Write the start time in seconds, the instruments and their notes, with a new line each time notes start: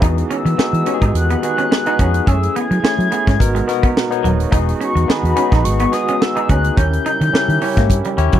Already playing: string section E3
0.01 fingered electric bass E2, string section D#3 G#3, tine electric piano B3 D#4 F#4 G#4, clean electric guitar D#4, kick, closed hi-hat
0.18 closed hi-hat
0.30 clean electric guitar C#4, soft synth lead E6, closed hi-hat
0.45 fingered electric bass E3, muted clean electric guitar stroke, closed hi-hat
0.58 tine electric piano B3 D#4 F#4 G#4, muted fingered electric bass stroke, muted clean electric guitar stroke, snare
0.73 fingered electric bass E3, closed hi-hat
0.86 tine electric piano B3 D#4 F#4 G4, clean electric guitar C#4, closed hi-hat
0.94 tine electric piano G#4
1.02 fingered electric bass G#2, clean electric guitar D#4, kick, closed hi-hat
1.14 fingered electric bass E2, soft synth lead F#6, closed hi-hat
1.30 clean electric guitar B3, closed hi-hat
1.43 tine electric piano B3 D#4 F#4 G#4, muted clean electric guitar stroke, closed hi-hat
1.58 clean electric guitar C#4, closed hi-hat
1.71 muted clean electric guitar stroke, snare
1.86 tine electric piano B3 D#4 F#4 G#4, clean electric guitar D#4, closed hi-hat
1.99 fingered electric bass F2, clean electric guitar C#4, kick, closed hi-hat
2.14 closed hi-hat
2.27 fingered electric bass F#2, string section E3 A3 G#4, tine electric piano G#3 C#4 E4 G#4, clean electric guitar C#4, soft synth lead E6, kick, closed hi-hat
2.33 tine electric piano A3
2.43 closed hi-hat
2.56 clean electric guitar B3, soft synth lead G#6, closed hi-hat
2.71 fingered electric bass F#3, muted clean electric guitar stroke, closed hi-hat
2.83 tine electric piano A3 C#4 E4 G#4, muted fingered electric bass stroke, muted clean electric guitar stroke, snare
2.99 fingered electric bass F#3, closed hi-hat
3.10 tine electric piano A3 C#4 E4 G#4, clean electric guitar B3, closed hi-hat
3.27 fingered electric bass G#2, clean electric guitar C#4, kick, snare, closed hi-hat
3.39 fingered electric bass G#1, string section B2 G#3 F#4, tine electric piano B3 D#4 F#4 A#4, kick, closed hi-hat
3.55 clean electric guitar G#3, closed hi-hat
3.67 tine electric piano B3 D#4 F#4 A#4, muted clean electric guitar stroke, snare, closed hi-hat
3.83 clean electric guitar B3, kick, closed hi-hat
3.97 snare
4.10 tine electric piano B3 D#4 F#4 C#5, closed hi-hat
4.24 fingered electric bass D#1, clean electric guitar F#3, closed hi-hat
4.40 closed hi-hat
4.51 fingered electric bass E1, string section D#3, tine electric piano B3 D#4 F#4 G#4, clean electric guitar D#4, kick, closed hi-hat
4.69 closed hi-hat
4.81 clean electric guitar C#4, soft synth lead C#6, closed hi-hat
4.95 fingered electric bass E2, muted clean electric guitar stroke, closed hi-hat
5.03 soft synth lead C#6
5.08 tine electric piano B3 D#4 F#4 G#4, soft synth lead B5, muted fingered electric bass stroke, muted clean electric guitar stroke, snare
5.23 fingered electric bass E2, closed hi-hat
5.35 tine electric piano B3 D#4 F#4 G#4, clean electric guitar C#4, closed hi-hat
5.52 fingered electric bass A#1, clean electric guitar D#4, kick, snare, closed hi-hat
5.64 fingered electric bass G#1, soft synth lead C#6, closed hi-hat
5.79 clean electric guitar B3, closed hi-hat
5.91 tine electric piano B3 D#4 F#4 G#4, soft synth lead D#6, muted clean electric guitar stroke, snare, closed hi-hat
6.08 clean electric guitar C#4, closed hi-hat
6.22 soft synth lead E6, muted clean electric guitar stroke, snare
6.35 tine electric piano B3 D#4 F#4 G#4, clean electric guitar D#4, closed hi-hat
6.49 fingered electric bass D2, clean electric guitar C#4, soft synth lead F#6, kick, closed hi-hat
6.64 closed hi-hat
6.76 fingered electric bass D#2, string section C#3 G3 E4, tine electric piano C#4 E4 G4 A#4, clean electric guitar C#4, soft synth lead G6, kick, closed hi-hat
6.93 closed hi-hat
7.06 clean electric guitar D#4, closed hi-hat
7.21 fingered electric bass D#3, muted clean electric guitar stroke, closed hi-hat
7.33 tine electric piano C#4 E4 G4 A#4, muted fingered electric bass stroke, muted clean electric guitar stroke, snare
7.49 fingered electric bass D#3, closed hi-hat
7.61 tine electric piano C#4 E4 G4 C#5, clean electric guitar C#4, open hi-hat
7.77 fingered electric bass G#2, clean electric guitar A#3, kick, snare, closed hi-hat
7.90 fingered electric bass G2, kick, closed hi-hat
8.04 clean electric guitar G3, closed hi-hat
8.17 fingered electric bass D#2, tine electric piano C#4 E4 G4 C#5, muted clean electric guitar stroke, closed hi-hat
8.32 fingered electric bass C#2, clean electric guitar F#3, kick, closed hi-hat